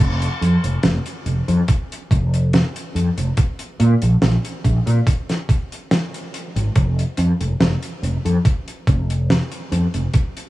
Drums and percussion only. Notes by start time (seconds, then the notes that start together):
0.00 kick
0.22 closed hi-hat
0.42 closed hi-hat
0.64 closed hi-hat
0.83 snare, closed hi-hat
1.06 closed hi-hat
1.26 closed hi-hat
1.48 closed hi-hat
1.68 kick, closed hi-hat
1.92 closed hi-hat
2.11 kick, closed hi-hat
2.34 closed hi-hat
2.53 snare, closed hi-hat
2.76 closed hi-hat
2.96 closed hi-hat
3.18 closed hi-hat
3.37 kick, closed hi-hat
3.59 closed hi-hat
3.80 closed hi-hat
4.02 closed hi-hat
4.22 snare, closed hi-hat
4.45 closed hi-hat
4.64 kick, closed hi-hat
4.87 closed hi-hat
5.07 kick, closed hi-hat
5.29 snare, closed hi-hat
5.49 kick, closed hi-hat
5.72 closed hi-hat
5.91 snare, closed hi-hat
6.14 closed hi-hat
6.34 closed hi-hat
6.56 closed hi-hat
6.76 kick, closed hi-hat
6.99 closed hi-hat
7.17 closed hi-hat
7.41 closed hi-hat
7.61 snare, closed hi-hat
7.83 closed hi-hat
8.03 closed hi-hat
8.26 closed hi-hat
8.45 kick, closed hi-hat
8.68 closed hi-hat
8.87 kick, closed hi-hat
9.10 closed hi-hat
9.30 snare, closed hi-hat
9.52 closed hi-hat
9.72 closed hi-hat
9.94 closed hi-hat
10.14 kick, closed hi-hat
10.37 closed hi-hat